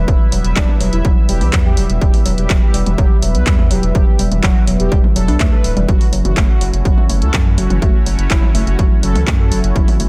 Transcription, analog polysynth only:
0.08 0.34 E4 loud
0.56 0.76 D4 medium
0.93 1.12 E4 loud
1.29 1.48 G4 loud
1.65 1.85 G4 loud
2.02 2.21 G4 loud
2.38 2.51 G4 medium
2.62 2.81 G4 loud
2.98 3.18 G4 loud
3.35 3.54 B4 medium
3.71 3.84 G4 medium
3.95 4.21 G4 loud
4.44 4.63 F#4 loud
4.80 4.99 G4 loud
5.16 5.35 A4 loud
5.53 5.72 B4 loud
5.88 6.08 F#4 loud
6.25 6.38 F#4 medium
6.49 6.68 F#4 loud
6.85 7.05 F#4 loud
7.22 7.41 A4 loud
7.58 7.71 F#4 medium
7.82 8.08 F#4 medium
8.31 8.50 E4 medium
8.67 8.86 F#4 loud
9.03 9.22 A4 loud
9.40 9.59 A4 loud
9.75 9.95 E4 loud

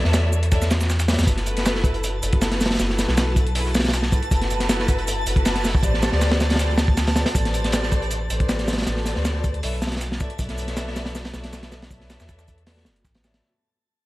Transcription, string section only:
0.00 0.50 A4 loud
0.00 0.50 B4 medium
0.00 0.50 C#5 loud
0.00 0.50 D5 loud
0.00 0.50 E5 loud
0.52 0.59 A4 loud
0.52 0.59 B4 medium
0.52 0.59 C#5 medium
0.52 0.59 D5 medium
0.52 0.59 E5 loud
1.08 1.25 A4 medium
1.08 1.25 B4 medium
1.08 1.25 C#5 medium
1.08 1.25 D5 medium
1.08 1.25 E5 medium
1.27 2.20 E4 loud
1.27 2.20 F#4 medium
1.27 2.20 A4 loud
1.27 2.20 B4 loud
2.22 2.77 E4 loud
2.22 2.77 F#4 medium
2.22 2.77 A4 medium
2.22 2.77 B4 loud
2.79 3.53 E4 loud
2.79 3.53 F#4 medium
2.79 3.53 A4 medium
2.79 3.53 B4 loud
3.56 3.63 E4 loud
3.56 3.63 F#4 medium
3.56 3.63 G#4 medium
3.56 3.63 A4 medium
3.56 3.63 B4 loud
4.12 4.29 E4 medium
4.12 4.29 F#4 medium
4.12 4.29 G#4 medium
4.12 4.29 A4 medium
4.12 4.29 B4 medium
4.31 5.24 E4 loud
4.31 5.24 F#4 loud
4.31 5.24 A4 loud
4.31 5.24 B4 loud
5.27 5.81 E4 loud
5.27 5.81 F#4 medium
5.27 5.81 A4 medium
5.27 5.81 B4 loud
5.84 6.57 G4 loud
5.84 6.57 A4 medium
5.84 6.57 B4 medium
5.84 6.57 C5 medium
5.84 6.57 D5 loud
6.60 6.67 G4 loud
6.60 6.67 A4 medium
6.60 6.67 B4 medium
6.60 6.67 C5 medium
6.60 6.67 D5 loud
7.16 7.33 G4 medium
7.16 7.33 A4 medium
7.16 7.33 B4 medium
7.16 7.33 C5 medium
7.16 7.33 D5 medium
7.35 8.28 G4 loud
7.35 8.28 A4 loud
7.35 8.28 B4 loud
7.35 8.28 C5 medium
7.35 8.28 D5 loud
8.30 8.85 G4 loud
8.30 8.85 A4 medium
8.30 8.85 B4 medium
8.30 8.85 C5 medium
8.30 8.85 D5 loud
8.87 9.61 G4 loud
8.87 9.61 A4 loud
8.87 9.61 B4 loud
8.87 9.61 C5 loud
8.87 9.61 D5 loud
9.63 9.70 A4 loud
9.63 9.70 B4 medium
9.63 9.70 C#5 loud
9.63 9.70 D5 medium
9.63 9.70 E5 loud
10.20 10.37 A4 medium
10.20 10.37 B4 medium
10.20 10.37 C#5 medium
10.20 10.37 D5 medium
10.20 10.37 E5 medium
10.39 11.32 A4 loud
10.39 11.32 B4 loud
10.39 11.32 C#5 loud
10.39 11.32 D5 loud
10.39 11.32 E5 loud
11.34 11.89 A4 loud
11.34 11.89 B4 medium
11.34 11.89 C#5 medium
11.34 11.89 D5 medium
11.34 11.89 E5 loud
11.91 12.65 A4 loud
11.91 12.65 B4 medium
11.91 12.65 C#5 medium
11.91 12.65 D5 medium
11.91 12.65 E5 loud
12.67 12.74 A4 loud
12.67 12.74 B4 medium
12.67 12.74 C#5 medium
12.67 12.74 D5 medium
12.67 12.74 E5 loud
13.24 13.41 A4 medium
13.24 13.41 B4 medium
13.24 13.41 C#5 medium
13.24 13.41 D5 medium
13.24 13.41 E5 medium

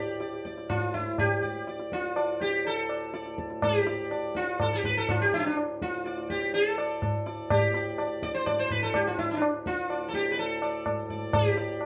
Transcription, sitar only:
0.00 0.41 G4 medium
0.00 0.19 D5 soft
0.20 0.43 D5 soft
0.45 0.68 D5 soft
0.69 0.92 F4 medium
0.94 1.17 E4 medium
1.19 1.64 G4 medium
1.42 1.65 D5 soft
1.68 1.90 D5 soft
1.93 2.43 F4 medium
2.16 2.39 D5 soft
2.41 2.66 G4 medium
2.67 3.63 A4 medium
3.14 3.36 D5 soft
3.63 4.38 G4 loud
3.86 4.09 D5 soft
4.11 4.34 D5 soft
4.36 4.61 F4 medium
4.61 4.73 A4 medium
4.73 4.85 G4 medium
4.85 4.97 B4 medium
4.97 5.09 A4 loud
5.09 5.21 F4 medium
5.22 5.33 G4 medium
5.34 5.39 D4 medium
5.34 5.36 E4 medium
5.40 5.45 E4 medium
5.46 5.57 D4 medium
5.82 6.32 F4 medium
6.06 6.28 D5 soft
6.30 6.53 G4 medium
6.54 7.46 A4 medium
6.78 7.01 D5 soft
7.26 7.49 D5 soft
7.51 8.25 G4 medium
7.75 7.97 D5 soft
7.99 8.21 D5 soft
8.23 8.34 D5 loud
8.34 8.46 C5 medium
8.46 8.58 D5 loud
8.59 8.71 C5 medium
8.71 8.82 B4 medium
8.83 8.95 A4 medium
8.95 9.07 G4 medium
9.07 9.18 F4 medium
9.19 9.31 E4 medium
9.31 9.34 D4 medium
9.31 9.37 E4 medium
9.37 9.42 D4 medium
9.67 10.06 F4 medium
9.90 10.13 D5 soft
10.08 10.14 A4 medium
10.14 10.31 G4 medium
10.32 10.38 B4 medium
10.39 11.33 A4 medium
10.63 10.85 D5 soft
11.10 11.32 D5 soft
11.34 11.86 G4 medium
11.57 11.79 D5 soft

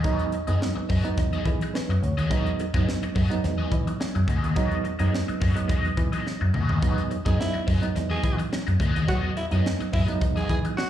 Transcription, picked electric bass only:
0.05 0.16 E2 loud
0.48 0.58 F#2 medium
0.77 muted picked electric bass stroke soft
0.90 1.01 F#2 loud
1.18 1.29 E2 loud
1.46 1.57 E3 loud
1.89 1.99 F#2 medium
2.03 2.14 D2 loud
2.18 2.31 D#2 medium
2.31 2.42 E2 loud
2.74 2.84 F#2 medium
3.03 muted picked electric bass stroke medium
3.16 3.27 F#2 medium
3.44 3.56 E2 medium
3.72 3.83 E3 loud
4.16 4.26 F#2 medium
4.28 4.40 D2 medium
4.44 4.57 D#2 medium
4.57 4.68 E2 loud
5.00 5.10 F#2 medium
5.29 muted picked electric bass stroke soft
5.42 5.53 F#2 medium
5.70 5.81 E2 loud
5.98 6.09 E3 loud
6.41 6.52 F#2 medium
6.55 6.66 D2 medium
6.70 6.83 D#2 loud
6.83 6.94 E2 loud
7.26 7.36 F#2 medium
7.55 muted picked electric bass stroke medium
7.68 7.79 F#2 medium
7.96 8.07 E2 loud
8.24 8.35 E3 loud
8.68 8.78 F#2 medium
8.80 8.92 D2 medium
8.96 9.09 D#2 loud
9.09 9.20 E2 loud
9.52 9.62 F#2 medium
9.81 muted picked electric bass stroke soft
9.94 10.05 F#2 medium
10.22 10.33 E2 loud
10.50 10.61 E3 loud

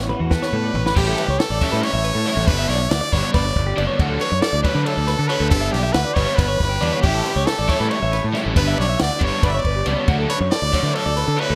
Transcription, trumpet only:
0.31 0.92 B4 medium
0.96 1.41 G4 loud
1.39 1.85 A4 loud
1.83 2.49 C#5 loud
2.47 2.70 B4 loud
2.69 2.91 C#5 loud
2.90 3.15 D5 loud
3.13 3.33 C#5 loud
3.34 3.80 D5 loud
4.20 4.43 C#5 loud
4.42 4.63 D5 loud
4.63 4.87 B4 medium
4.86 5.29 A4 loud
5.28 5.50 B4 loud
5.50 5.74 A4 loud
5.72 5.94 G4 loud
5.93 6.15 B4 loud
6.14 6.37 C#5 loud
6.36 7.01 B4 loud
7.02 7.48 G4 loud
7.46 7.91 A4 loud
7.90 8.29 C#5 medium
8.57 8.77 B4 loud
8.80 8.99 C#5 loud
9.03 9.26 D5 loud
9.24 9.47 C#5 loud
9.46 9.50 D5 loud
9.46 9.59 E5 medium
9.58 9.92 D5 medium
10.30 10.39 C#5 loud
10.51 10.96 D5 loud
10.95 11.41 A4 loud
11.40 11.55 B4 loud

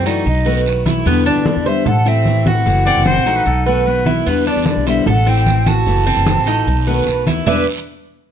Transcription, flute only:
0.07 0.26 D5 medium
0.27 0.64 D#5 medium
1.09 1.30 B4 medium
1.28 1.70 D5 medium
1.68 1.89 E5 medium
1.88 2.10 F#5 loud
2.08 2.50 E5 loud
2.48 4.08 F#5 loud
4.28 4.49 B4 medium
4.47 4.67 D5 loud
4.68 4.86 D5 loud
4.88 5.06 E5 loud
5.08 5.30 F#5 loud
5.29 5.70 G5 loud
5.68 7.27 A5 loud
7.48 7.66 E5 medium

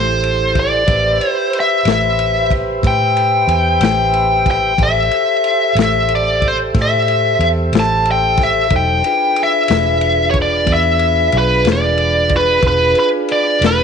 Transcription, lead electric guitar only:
0.00 0.60 C5 medium
0.59 1.29 D5 medium
1.29 1.58 C5 medium
1.60 1.87 E5 medium
1.92 2.50 E5 medium
2.87 3.84 G5 medium
3.85 4.50 G5 medium
4.51 4.82 G5 medium
4.83 5.75 E5 medium
5.82 6.10 E5 loud
6.15 6.46 D5 medium
6.48 6.56 C5 medium
6.82 7.48 E5 medium
7.79 8.07 A5 medium
8.11 8.42 G5 medium
8.43 8.71 E5 medium
8.76 9.41 G5 loud
9.43 10.30 E5 loud
10.30 10.36 C#5 medium
10.42 10.72 D5 medium
10.73 11.38 E5 medium
11.38 11.66 B4 medium
11.72 12.30 D5 medium
12.37 12.66 B4 medium
12.68 12.98 B4 medium
13.00 13.08 B4 medium
13.32 13.61 D5 medium
13.66 13.84 B4 medium

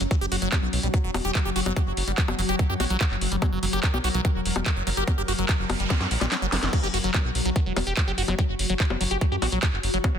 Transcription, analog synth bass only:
0.01 0.07 F#1 medium
0.21 0.27 F#1 medium
0.32 0.38 F#1 loud
0.42 0.48 F#1 medium
0.63 0.69 B1 medium
0.73 0.79 B1 loud
0.83 0.89 B1 medium
1.04 1.10 E1 loud
1.14 1.20 E1 loud
1.25 1.31 E1 medium
1.45 1.52 F#1 medium
1.56 1.62 F#1 loud
1.66 1.72 F#1 medium
1.87 1.93 F#1 medium
1.97 2.03 F#1 loud
2.07 2.14 F#1 medium
2.28 2.34 F#1 medium
2.39 2.45 F#1 loud
2.49 2.55 F#1 medium
2.70 2.76 F#2 loud
2.80 2.86 A#1 loud
2.90 2.96 A#1 medium
3.11 3.17 F#1 medium
3.21 3.27 F#1 loud
3.32 3.38 F#1 medium
3.52 3.58 F#1 medium
3.63 3.69 F#1 loud
3.73 3.79 F#1 loud
3.94 4.00 B1 medium
4.04 4.10 B1 loud
4.14 4.20 B1 loud
4.35 4.41 E1 medium
4.45 4.51 E1 loud
4.56 4.62 E1 medium
4.76 4.83 F#1 medium
4.87 4.93 F#1 loud
4.97 5.03 F#1 medium
5.18 5.24 F#1 medium
5.28 5.34 F#1 loud
5.39 5.45 F#1 medium
5.59 5.65 F#1 medium
5.70 5.76 F#1 loud
5.80 5.86 F#1 loud
6.01 6.07 F#2 medium
6.11 6.17 A#1 loud
6.21 6.27 A#1 medium
6.42 6.48 F#1 medium
6.52 6.58 F#1 loud
6.63 6.69 F#1 medium
6.83 6.89 F#1 medium
6.94 7.00 F#1 loud
7.04 7.10 F#1 medium
7.25 7.31 B1 medium
7.35 7.41 B1 loud
7.45 7.51 B1 medium
7.66 7.72 E1 medium
7.76 7.83 E1 loud
7.87 7.93 E1 medium
8.07 8.14 F#1 medium
8.18 8.24 F#1 loud
8.28 8.34 F#1 medium
8.49 8.55 F#1 medium
8.59 8.65 F#1 loud
8.70 8.76 F#1 medium
8.90 8.96 F#1 medium
9.01 9.07 F#1 loud
9.11 9.17 F#1 medium
9.32 9.38 F#2 medium
9.42 9.48 A#1 loud
9.52 9.58 A#1 medium
9.73 9.79 F#1 medium
9.83 9.89 F#1 loud
9.94 10.00 F#1 loud
10.14 10.19 F#1 medium

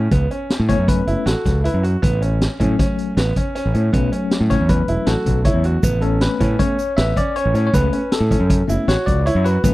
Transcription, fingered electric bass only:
0.12 0.26 C#2 medium
0.60 0.74 A2 medium
0.78 1.00 F#2 medium
1.07 1.15 F#1 medium
1.26 1.33 A1 loud
1.46 1.67 C#2 medium
1.74 1.96 F#2 medium
2.03 2.46 A1 medium
2.60 2.75 A2 loud
3.17 3.31 A1 medium
3.66 3.73 A1 medium
3.75 3.89 A2 medium
3.94 4.08 B1 medium
4.41 4.55 A2 medium
4.60 4.82 E2 medium
4.88 4.95 E1 medium
5.07 5.14 A1 loud
5.26 5.48 B1 medium
5.54 5.76 E2 medium
5.83 6.26 A1 medium
6.41 6.55 A2 medium
6.98 7.12 A1 medium
7.46 7.53 A1 medium
7.54 7.69 A2 medium
7.74 7.88 C#2 medium
8.20 8.35 A2 medium
8.40 8.62 F#2 medium
8.68 8.76 F#1 medium
8.88 8.95 A1 loud
9.07 9.28 C#2 medium
9.35 9.57 F#2 medium
9.64 9.74 A1 medium

